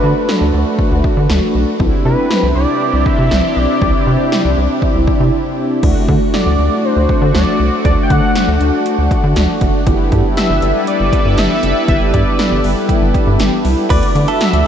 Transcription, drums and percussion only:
0.29 snare
0.79 kick
1.04 kick
1.30 snare
1.80 kick
2.31 snare
3.06 kick
3.31 snare
3.82 kick
4.32 snare
4.82 kick
5.07 kick
5.83 kick, crash
6.08 kick
6.34 snare
7.09 kick
7.35 snare
7.85 kick, closed hi-hat
8.10 kick, closed hi-hat
8.35 snare, closed hi-hat
8.61 closed hi-hat
8.86 closed hi-hat
9.11 kick, closed hi-hat
9.36 snare, closed hi-hat
9.61 kick, closed hi-hat
9.87 kick, closed hi-hat
10.12 kick, closed hi-hat
10.37 snare, closed hi-hat
10.62 closed hi-hat
10.87 closed hi-hat
11.13 kick, closed hi-hat
11.38 snare, closed hi-hat
11.63 closed hi-hat
11.88 kick, closed hi-hat
12.14 kick, closed hi-hat
12.39 snare, closed hi-hat
12.64 open hi-hat
12.89 kick, closed hi-hat
13.14 kick, closed hi-hat
13.39 snare, closed hi-hat
13.65 open hi-hat
13.90 kick, closed hi-hat, crash
14.03 closed hi-hat
14.16 closed hi-hat
14.28 closed hi-hat
14.41 snare, closed hi-hat
14.53 closed hi-hat

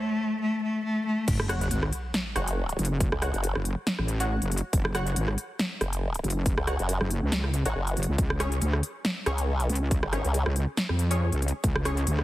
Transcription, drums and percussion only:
1.28 kick, closed hi-hat, crash
1.40 cross-stick
1.49 cross-stick, closed hi-hat
1.61 closed hi-hat
1.71 closed hi-hat
1.83 cross-stick
1.93 closed hi-hat
2.14 snare, closed hi-hat
2.36 cross-stick, closed hi-hat
2.48 closed hi-hat
2.69 closed hi-hat
2.79 closed hi-hat
2.85 closed hi-hat
3.00 kick, closed hi-hat
3.12 cross-stick
3.22 cross-stick, closed hi-hat
3.34 closed hi-hat
3.44 closed hi-hat
3.55 cross-stick
3.65 closed hi-hat
3.87 snare, closed hi-hat
3.99 cross-stick
4.08 closed hi-hat
4.20 closed hi-hat
4.42 closed hi-hat
4.52 closed hi-hat
4.57 closed hi-hat
4.73 kick, closed hi-hat
4.85 cross-stick
4.95 cross-stick, closed hi-hat
5.07 closed hi-hat
5.16 closed hi-hat
5.28 cross-stick
5.38 closed hi-hat
5.59 snare, closed hi-hat
5.81 cross-stick, closed hi-hat
5.93 closed hi-hat
6.14 closed hi-hat
6.24 closed hi-hat
6.30 closed hi-hat
6.46 kick, closed hi-hat
6.58 cross-stick
6.67 cross-stick, closed hi-hat
6.79 closed hi-hat
6.89 closed hi-hat
7.01 cross-stick
7.10 closed hi-hat
7.32 snare, closed hi-hat
7.44 cross-stick
7.54 closed hi-hat
7.65 closed hi-hat
7.87 closed hi-hat
7.97 closed hi-hat
8.03 closed hi-hat
8.18 kick, closed hi-hat
8.30 cross-stick
8.40 cross-stick, closed hi-hat
8.52 closed hi-hat
8.62 closed hi-hat
8.73 cross-stick
8.83 closed hi-hat
9.05 snare, closed hi-hat
9.26 cross-stick, closed hi-hat
9.38 closed hi-hat
9.60 closed hi-hat
9.69 closed hi-hat
9.75 closed hi-hat
9.91 kick, closed hi-hat
10.03 cross-stick
10.13 cross-stick, closed hi-hat
10.24 closed hi-hat
10.34 closed hi-hat
10.46 cross-stick
10.56 closed hi-hat
10.77 snare, closed hi-hat
10.89 cross-stick
10.99 closed hi-hat
11.11 closed hi-hat
11.32 closed hi-hat
11.42 closed hi-hat
11.48 closed hi-hat
11.64 kick, closed hi-hat
11.76 cross-stick
11.85 cross-stick, closed hi-hat
11.97 closed hi-hat
12.07 closed hi-hat
12.19 cross-stick

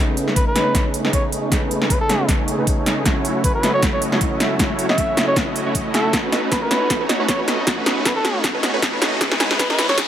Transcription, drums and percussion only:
0.17 closed hi-hat
0.28 snare
0.36 kick, closed hi-hat
0.56 snare, closed hi-hat
0.75 kick, snare, closed hi-hat
0.94 closed hi-hat
1.05 snare
1.13 kick, closed hi-hat
1.32 closed hi-hat
1.52 kick, snare, closed hi-hat
1.71 closed hi-hat
1.82 snare
1.90 kick, closed hi-hat
2.09 snare, closed hi-hat
2.29 kick, snare, closed hi-hat
2.48 closed hi-hat
2.67 kick, closed hi-hat
2.86 snare, closed hi-hat
3.06 kick, snare, closed hi-hat
3.25 closed hi-hat
3.44 kick, closed hi-hat
3.63 snare, closed hi-hat
3.82 kick, snare, closed hi-hat
4.02 closed hi-hat
4.12 snare
4.21 kick, closed hi-hat
4.40 snare, closed hi-hat
4.59 kick, snare, closed hi-hat
4.79 closed hi-hat
4.89 snare
4.98 kick, closed hi-hat
5.17 snare, closed hi-hat
5.36 kick, snare, closed hi-hat
5.56 closed hi-hat
5.75 kick, closed hi-hat
5.94 snare, closed hi-hat
6.13 kick, snare, closed hi-hat
6.32 snare, closed hi-hat
6.52 kick, snare, closed hi-hat
6.71 snare, closed hi-hat
6.90 kick, snare, closed hi-hat
7.09 snare, closed hi-hat
7.28 kick, snare, closed hi-hat
7.48 snare, closed hi-hat
7.67 kick, snare, closed hi-hat
7.86 snare, closed hi-hat
8.05 kick, snare, closed hi-hat
8.25 snare, closed hi-hat
8.44 kick, snare, closed hi-hat
8.63 snare, closed hi-hat
8.82 kick, snare, closed hi-hat
9.02 snare, closed hi-hat
9.21 kick, snare, closed hi-hat
9.32 snare
9.40 snare, closed hi-hat
9.51 snare
9.59 kick, snare, closed hi-hat
9.70 snare
9.79 snare, closed hi-hat
9.89 snare
9.98 kick, snare, closed hi-hat

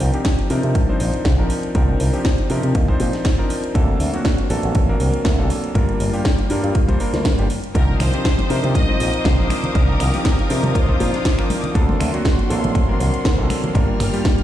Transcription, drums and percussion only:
0.00 open hi-hat
0.14 closed hi-hat
0.25 kick, snare, closed hi-hat
0.39 closed hi-hat
0.50 open hi-hat
0.63 closed hi-hat
0.75 kick, closed hi-hat
1.00 open hi-hat
1.14 closed hi-hat
1.25 kick, snare, closed hi-hat
1.50 open hi-hat
1.63 closed hi-hat
1.75 kick, closed hi-hat
2.00 open hi-hat
2.14 open hi-hat
2.25 kick, snare, closed hi-hat
2.38 closed hi-hat
2.50 open hi-hat
2.63 closed hi-hat
2.75 kick, closed hi-hat
2.88 kick
3.00 open hi-hat
3.13 snare, closed hi-hat
3.25 kick, snare, closed hi-hat
3.50 open hi-hat
3.64 closed hi-hat
3.75 kick, closed hi-hat
4.00 open hi-hat
4.14 closed hi-hat
4.25 kick, snare, closed hi-hat
4.38 closed hi-hat
4.50 open hi-hat
4.63 closed hi-hat
4.75 kick, closed hi-hat
5.00 open hi-hat
5.14 closed hi-hat
5.25 kick, snare, closed hi-hat
5.50 open hi-hat
5.64 closed hi-hat
5.75 kick, closed hi-hat
5.89 closed hi-hat
6.00 open hi-hat
6.14 open hi-hat
6.25 kick, snare, closed hi-hat
6.38 closed hi-hat
6.50 open hi-hat
6.64 closed hi-hat
6.75 kick, closed hi-hat
6.88 kick, closed hi-hat
7.00 open hi-hat
7.14 snare, closed hi-hat
7.25 kick, snare, closed hi-hat
7.39 closed hi-hat
7.50 open hi-hat
7.64 closed hi-hat
7.75 kick, closed hi-hat
8.00 finger snap, open hi-hat, muted conga, low conga
8.14 closed hi-hat
8.25 kick, snare, closed hi-hat
8.38 closed hi-hat, muted conga
8.50 open hi-hat
8.63 closed hi-hat, high conga, low conga
8.75 kick, closed hi-hat
8.88 muted conga
9.00 open hi-hat
9.14 closed hi-hat
9.25 kick, snare, closed hi-hat, muted conga
9.50 finger snap, open hi-hat, high conga
9.63 closed hi-hat, low conga
9.75 kick, closed hi-hat, muted conga
10.00 finger snap, open hi-hat, low conga
10.14 open hi-hat, muted conga
10.25 kick, snare, closed hi-hat
10.39 closed hi-hat
10.50 open hi-hat
10.63 closed hi-hat, muted conga, high conga, low conga
10.75 kick, closed hi-hat
10.89 kick
11.00 open hi-hat, muted conga
11.14 snare, closed hi-hat
11.25 kick, snare, closed hi-hat
11.39 finger snap
11.50 open hi-hat, muted conga, high conga
11.63 closed hi-hat, low conga
11.75 kick, closed hi-hat
11.89 muted conga
12.00 finger snap, open hi-hat, low conga
12.14 closed hi-hat
12.25 kick, snare, closed hi-hat
12.38 closed hi-hat, muted conga
12.50 open hi-hat
12.63 closed hi-hat, high conga, low conga
12.75 kick, closed hi-hat, muted conga
13.00 open hi-hat
13.14 closed hi-hat
13.25 kick, snare, closed hi-hat, muted conga
13.50 finger snap, open hi-hat, high conga
13.64 closed hi-hat, muted conga, low conga
13.75 kick, closed hi-hat
14.00 finger snap, open hi-hat, low conga
14.14 open hi-hat, muted conga
14.25 kick, snare, closed hi-hat
14.38 closed hi-hat

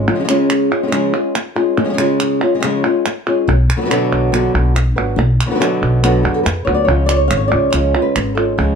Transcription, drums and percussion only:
0.29 clap
0.50 clap
0.92 clap
1.35 clap
1.98 clap
2.20 clap
2.63 clap
3.06 clap
3.70 clap
3.91 clap
4.34 clap
4.76 clap
5.41 clap
5.62 clap
6.04 clap
6.46 clap
7.09 clap
7.31 clap
7.73 clap
8.16 clap

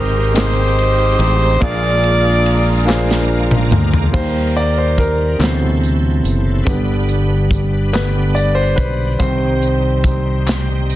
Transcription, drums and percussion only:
0.35 snare, clap, ride
0.79 ride
1.20 ride
1.62 kick, ride
2.04 ride
2.46 ride
2.89 snare, clap
3.11 snare
3.51 mid tom
3.72 mid tom
3.94 floor tom
4.14 kick, crash
4.57 closed hi-hat
4.98 kick, closed hi-hat
5.41 snare, clap, closed hi-hat
5.83 closed hi-hat
6.25 closed hi-hat
6.67 kick, closed hi-hat
7.09 closed hi-hat
7.51 kick, closed hi-hat
7.93 snare, clap, closed hi-hat
8.36 closed hi-hat
8.78 kick, closed hi-hat
9.20 kick, closed hi-hat
9.62 closed hi-hat
10.04 kick, closed hi-hat
10.47 snare, clap, closed hi-hat
10.90 closed hi-hat

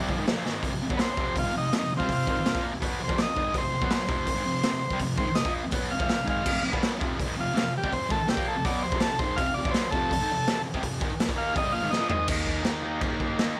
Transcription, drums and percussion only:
0.09 kick
0.27 snare, open hi-hat
0.46 snare
0.63 kick, open hi-hat
0.90 kick
0.99 snare, open hi-hat
1.17 kick
1.36 kick, open hi-hat
1.73 snare, open hi-hat
2.00 kick
2.09 kick, open hi-hat
2.27 kick
2.46 snare, open hi-hat
2.55 kick
2.82 kick, open hi-hat
3.09 kick
3.18 snare, open hi-hat
3.36 kick
3.54 kick, open hi-hat
3.82 kick
3.90 snare, open hi-hat
4.09 kick
4.27 kick, open hi-hat
4.63 snare, open hi-hat
4.91 kick
4.99 kick, open hi-hat
5.18 kick
5.35 snare, open hi-hat
5.45 kick
5.71 kick, open hi-hat
6.00 kick
6.09 snare, open hi-hat
6.28 kick
6.46 kick, crash
6.73 kick
6.83 snare, open hi-hat
7.01 kick
7.20 kick, open hi-hat
7.57 snare, open hi-hat
7.84 kick
7.93 kick, open hi-hat
8.10 kick
8.28 snare, open hi-hat
8.37 kick
8.65 kick, open hi-hat
8.92 kick
9.00 snare, open hi-hat
9.19 kick
9.37 kick, open hi-hat
9.65 kick
9.74 snare, open hi-hat
9.92 kick
10.11 kick, open hi-hat
10.47 snare, open hi-hat
10.74 kick
10.83 kick, open hi-hat
11.01 kick
11.20 snare, open hi-hat
11.29 kick
11.56 kick, open hi-hat
11.93 snare
12.10 floor tom
12.28 kick, crash
12.47 kick
12.64 snare, crash
13.01 kick, crash
13.20 kick
13.39 snare, crash

